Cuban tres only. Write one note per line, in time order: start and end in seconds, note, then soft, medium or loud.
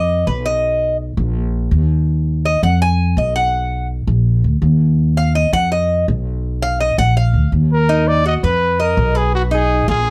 0.00 0.25 D#5 loud
0.27 0.45 B4 medium
0.46 0.96 D#5 medium
2.45 2.63 D#5 medium
2.63 2.81 F#5 medium
2.82 3.15 G#5 loud
3.18 3.35 D#5 medium
3.36 3.86 F#5 medium
5.17 5.35 F5 loud
5.35 5.53 D#5 medium
5.53 5.71 F#5 loud
5.72 6.05 D#5 medium
6.62 6.80 F5 loud
6.80 6.98 D#5 medium
6.98 7.16 F#5 loud
7.17 7.50 F5 loud
7.89 8.24 D#4 medium
8.26 8.43 F#4 medium
8.44 8.79 B4 medium
8.80 9.15 D#5 medium
9.15 9.50 B4 medium
9.51 9.87 D#4 medium
9.88 10.10 F4 medium